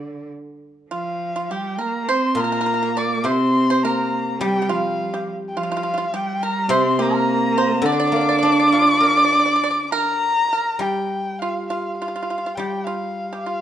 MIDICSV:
0, 0, Header, 1, 5, 480
1, 0, Start_track
1, 0, Tempo, 612245
1, 707, Time_signature, 4, 2, 24, 8
1, 708, Tempo, 588235
1, 2628, Tempo, 573614
1, 6468, Tempo, 593472
1, 9348, Tempo, 579710
1, 11176, End_track
2, 0, Start_track
2, 0, Title_t, "Erhu"
2, 0, Program_c, 0, 110
2, 0, Note_on_c, 0, 74, 82
2, 237, Note_off_c, 0, 74, 0
2, 732, Note_on_c, 0, 77, 82
2, 1207, Note_on_c, 0, 79, 81
2, 1219, Note_off_c, 0, 77, 0
2, 1447, Note_on_c, 0, 82, 85
2, 1459, Note_off_c, 0, 79, 0
2, 1677, Note_on_c, 0, 84, 95
2, 1689, Note_off_c, 0, 82, 0
2, 1931, Note_on_c, 0, 82, 101
2, 1943, Note_off_c, 0, 84, 0
2, 2400, Note_on_c, 0, 86, 97
2, 2413, Note_off_c, 0, 82, 0
2, 2642, Note_on_c, 0, 84, 107
2, 2654, Note_off_c, 0, 86, 0
2, 3110, Note_on_c, 0, 82, 89
2, 3122, Note_off_c, 0, 84, 0
2, 3594, Note_off_c, 0, 82, 0
2, 3601, Note_on_c, 0, 79, 99
2, 3843, Note_on_c, 0, 77, 86
2, 3856, Note_off_c, 0, 79, 0
2, 4317, Note_off_c, 0, 77, 0
2, 4491, Note_on_c, 0, 79, 60
2, 4566, Note_on_c, 0, 77, 96
2, 4579, Note_off_c, 0, 79, 0
2, 5051, Note_on_c, 0, 79, 92
2, 5063, Note_off_c, 0, 77, 0
2, 5283, Note_on_c, 0, 82, 105
2, 5296, Note_off_c, 0, 79, 0
2, 5522, Note_on_c, 0, 84, 104
2, 5535, Note_off_c, 0, 82, 0
2, 5769, Note_on_c, 0, 82, 107
2, 5782, Note_off_c, 0, 84, 0
2, 6475, Note_on_c, 0, 86, 127
2, 6487, Note_off_c, 0, 82, 0
2, 8150, Note_off_c, 0, 86, 0
2, 8155, Note_on_c, 0, 82, 127
2, 8873, Note_on_c, 0, 79, 91
2, 8885, Note_off_c, 0, 82, 0
2, 9335, Note_on_c, 0, 77, 83
2, 9347, Note_off_c, 0, 79, 0
2, 9573, Note_off_c, 0, 77, 0
2, 9578, Note_on_c, 0, 77, 76
2, 9810, Note_off_c, 0, 77, 0
2, 9820, Note_on_c, 0, 77, 78
2, 10296, Note_on_c, 0, 79, 72
2, 10309, Note_off_c, 0, 77, 0
2, 10535, Note_on_c, 0, 77, 81
2, 10547, Note_off_c, 0, 79, 0
2, 11001, Note_off_c, 0, 77, 0
2, 11006, Note_on_c, 0, 77, 79
2, 11176, Note_off_c, 0, 77, 0
2, 11176, End_track
3, 0, Start_track
3, 0, Title_t, "Pipa"
3, 0, Program_c, 1, 105
3, 714, Note_on_c, 1, 65, 65
3, 1048, Note_off_c, 1, 65, 0
3, 1079, Note_on_c, 1, 65, 67
3, 1186, Note_off_c, 1, 65, 0
3, 1202, Note_on_c, 1, 67, 67
3, 1419, Note_off_c, 1, 67, 0
3, 1428, Note_on_c, 1, 70, 53
3, 1652, Note_off_c, 1, 70, 0
3, 1673, Note_on_c, 1, 72, 87
3, 1895, Note_off_c, 1, 72, 0
3, 1905, Note_on_c, 1, 70, 72
3, 1952, Note_off_c, 1, 70, 0
3, 1962, Note_on_c, 1, 70, 55
3, 2019, Note_off_c, 1, 70, 0
3, 2029, Note_on_c, 1, 70, 70
3, 2086, Note_off_c, 1, 70, 0
3, 2099, Note_on_c, 1, 70, 69
3, 2133, Note_off_c, 1, 70, 0
3, 2143, Note_on_c, 1, 70, 61
3, 2196, Note_off_c, 1, 70, 0
3, 2206, Note_on_c, 1, 70, 49
3, 2265, Note_off_c, 1, 70, 0
3, 2276, Note_on_c, 1, 70, 61
3, 2330, Note_off_c, 1, 70, 0
3, 2393, Note_on_c, 1, 74, 87
3, 2613, Note_off_c, 1, 74, 0
3, 2621, Note_on_c, 1, 72, 75
3, 2965, Note_off_c, 1, 72, 0
3, 3001, Note_on_c, 1, 72, 88
3, 3111, Note_off_c, 1, 72, 0
3, 3123, Note_on_c, 1, 70, 83
3, 3568, Note_off_c, 1, 70, 0
3, 3595, Note_on_c, 1, 67, 80
3, 3759, Note_off_c, 1, 67, 0
3, 3769, Note_on_c, 1, 67, 59
3, 3827, Note_off_c, 1, 67, 0
3, 3831, Note_on_c, 1, 65, 72
3, 4166, Note_off_c, 1, 65, 0
3, 4202, Note_on_c, 1, 67, 64
3, 4309, Note_off_c, 1, 67, 0
3, 4563, Note_on_c, 1, 65, 72
3, 4607, Note_off_c, 1, 65, 0
3, 4617, Note_on_c, 1, 65, 60
3, 4670, Note_off_c, 1, 65, 0
3, 4686, Note_on_c, 1, 65, 68
3, 4719, Note_off_c, 1, 65, 0
3, 4729, Note_on_c, 1, 65, 65
3, 4774, Note_off_c, 1, 65, 0
3, 4784, Note_on_c, 1, 65, 63
3, 4843, Note_off_c, 1, 65, 0
3, 4872, Note_on_c, 1, 65, 51
3, 4895, Note_off_c, 1, 65, 0
3, 4905, Note_on_c, 1, 65, 70
3, 4964, Note_off_c, 1, 65, 0
3, 5039, Note_on_c, 1, 67, 80
3, 5257, Note_off_c, 1, 67, 0
3, 5283, Note_on_c, 1, 70, 77
3, 5498, Note_off_c, 1, 70, 0
3, 5511, Note_on_c, 1, 72, 89
3, 5732, Note_off_c, 1, 72, 0
3, 5752, Note_on_c, 1, 70, 80
3, 6198, Note_off_c, 1, 70, 0
3, 6243, Note_on_c, 1, 72, 96
3, 6460, Note_off_c, 1, 72, 0
3, 6477, Note_on_c, 1, 74, 91
3, 6520, Note_off_c, 1, 74, 0
3, 6530, Note_on_c, 1, 74, 64
3, 6581, Note_off_c, 1, 74, 0
3, 6590, Note_on_c, 1, 74, 86
3, 6643, Note_off_c, 1, 74, 0
3, 6654, Note_on_c, 1, 74, 64
3, 6705, Note_off_c, 1, 74, 0
3, 6722, Note_on_c, 1, 74, 68
3, 6754, Note_off_c, 1, 74, 0
3, 6764, Note_on_c, 1, 74, 62
3, 6817, Note_off_c, 1, 74, 0
3, 6826, Note_on_c, 1, 74, 78
3, 6881, Note_off_c, 1, 74, 0
3, 6905, Note_on_c, 1, 74, 68
3, 6945, Note_off_c, 1, 74, 0
3, 6954, Note_on_c, 1, 74, 66
3, 7004, Note_off_c, 1, 74, 0
3, 7014, Note_on_c, 1, 74, 63
3, 7067, Note_off_c, 1, 74, 0
3, 7075, Note_on_c, 1, 74, 64
3, 7128, Note_off_c, 1, 74, 0
3, 7140, Note_on_c, 1, 74, 53
3, 7184, Note_off_c, 1, 74, 0
3, 7193, Note_on_c, 1, 74, 54
3, 7243, Note_off_c, 1, 74, 0
3, 7252, Note_on_c, 1, 74, 47
3, 7290, Note_off_c, 1, 74, 0
3, 7300, Note_on_c, 1, 74, 68
3, 7345, Note_off_c, 1, 74, 0
3, 7355, Note_on_c, 1, 74, 61
3, 7418, Note_off_c, 1, 74, 0
3, 7429, Note_on_c, 1, 74, 68
3, 7477, Note_off_c, 1, 74, 0
3, 7487, Note_on_c, 1, 74, 53
3, 7531, Note_off_c, 1, 74, 0
3, 7541, Note_on_c, 1, 74, 68
3, 7590, Note_off_c, 1, 74, 0
3, 7600, Note_on_c, 1, 74, 62
3, 7655, Note_off_c, 1, 74, 0
3, 7664, Note_on_c, 1, 74, 65
3, 7711, Note_off_c, 1, 74, 0
3, 7721, Note_on_c, 1, 74, 65
3, 7761, Note_off_c, 1, 74, 0
3, 7771, Note_on_c, 1, 74, 70
3, 7839, Note_off_c, 1, 74, 0
3, 7853, Note_on_c, 1, 74, 66
3, 7907, Note_off_c, 1, 74, 0
3, 7916, Note_on_c, 1, 74, 79
3, 7964, Note_off_c, 1, 74, 0
3, 8148, Note_on_c, 1, 70, 110
3, 8598, Note_off_c, 1, 70, 0
3, 8638, Note_on_c, 1, 70, 62
3, 8857, Note_off_c, 1, 70, 0
3, 8864, Note_on_c, 1, 67, 67
3, 9313, Note_off_c, 1, 67, 0
3, 9360, Note_on_c, 1, 65, 73
3, 9581, Note_off_c, 1, 65, 0
3, 9593, Note_on_c, 1, 65, 67
3, 9817, Note_off_c, 1, 65, 0
3, 9854, Note_on_c, 1, 65, 60
3, 9897, Note_off_c, 1, 65, 0
3, 9907, Note_on_c, 1, 65, 45
3, 9957, Note_off_c, 1, 65, 0
3, 9969, Note_on_c, 1, 65, 53
3, 10017, Note_off_c, 1, 65, 0
3, 10027, Note_on_c, 1, 65, 50
3, 10078, Note_off_c, 1, 65, 0
3, 10091, Note_on_c, 1, 65, 48
3, 10140, Note_off_c, 1, 65, 0
3, 10154, Note_on_c, 1, 65, 44
3, 10202, Note_off_c, 1, 65, 0
3, 10223, Note_on_c, 1, 65, 51
3, 10267, Note_off_c, 1, 65, 0
3, 10331, Note_on_c, 1, 67, 68
3, 10544, Note_off_c, 1, 67, 0
3, 10558, Note_on_c, 1, 65, 66
3, 10887, Note_off_c, 1, 65, 0
3, 10938, Note_on_c, 1, 67, 65
3, 11035, Note_off_c, 1, 67, 0
3, 11052, Note_on_c, 1, 65, 50
3, 11176, Note_off_c, 1, 65, 0
3, 11176, End_track
4, 0, Start_track
4, 0, Title_t, "Cello"
4, 0, Program_c, 2, 42
4, 0, Note_on_c, 2, 50, 70
4, 230, Note_off_c, 2, 50, 0
4, 708, Note_on_c, 2, 53, 68
4, 1192, Note_on_c, 2, 55, 66
4, 1204, Note_off_c, 2, 53, 0
4, 1430, Note_on_c, 2, 58, 77
4, 1442, Note_off_c, 2, 55, 0
4, 1669, Note_on_c, 2, 60, 90
4, 1681, Note_off_c, 2, 58, 0
4, 1909, Note_on_c, 2, 58, 92
4, 1922, Note_off_c, 2, 60, 0
4, 2629, Note_on_c, 2, 60, 95
4, 2641, Note_off_c, 2, 58, 0
4, 3113, Note_on_c, 2, 58, 79
4, 3125, Note_off_c, 2, 60, 0
4, 3596, Note_off_c, 2, 58, 0
4, 3604, Note_on_c, 2, 55, 88
4, 3839, Note_on_c, 2, 53, 73
4, 3852, Note_off_c, 2, 55, 0
4, 4315, Note_off_c, 2, 53, 0
4, 4544, Note_on_c, 2, 53, 81
4, 4991, Note_off_c, 2, 53, 0
4, 5023, Note_on_c, 2, 55, 83
4, 5494, Note_on_c, 2, 60, 107
4, 5507, Note_off_c, 2, 55, 0
4, 5749, Note_on_c, 2, 58, 102
4, 5762, Note_off_c, 2, 60, 0
4, 6472, Note_on_c, 2, 62, 99
4, 6484, Note_off_c, 2, 58, 0
4, 8149, Note_off_c, 2, 62, 0
4, 11176, End_track
5, 0, Start_track
5, 0, Title_t, "Guzheng"
5, 0, Program_c, 3, 107
5, 1887, Note_on_c, 3, 46, 57
5, 2613, Note_on_c, 3, 48, 57
5, 2616, Note_off_c, 3, 46, 0
5, 3591, Note_on_c, 3, 55, 77
5, 4068, Note_off_c, 3, 48, 0
5, 5025, Note_off_c, 3, 55, 0
5, 5502, Note_on_c, 3, 48, 80
5, 6444, Note_on_c, 3, 50, 74
5, 6466, Note_off_c, 3, 48, 0
5, 6689, Note_on_c, 3, 58, 54
5, 6938, Note_on_c, 3, 62, 58
5, 7178, Note_on_c, 3, 65, 49
5, 7405, Note_on_c, 3, 70, 54
5, 7655, Note_off_c, 3, 58, 0
5, 7892, Note_off_c, 3, 50, 0
5, 7903, Note_off_c, 3, 62, 0
5, 8146, Note_off_c, 3, 65, 0
5, 8381, Note_off_c, 3, 70, 0
5, 8850, Note_on_c, 3, 55, 55
5, 10303, Note_off_c, 3, 55, 0
5, 10315, Note_on_c, 3, 55, 51
5, 11176, Note_off_c, 3, 55, 0
5, 11176, End_track
0, 0, End_of_file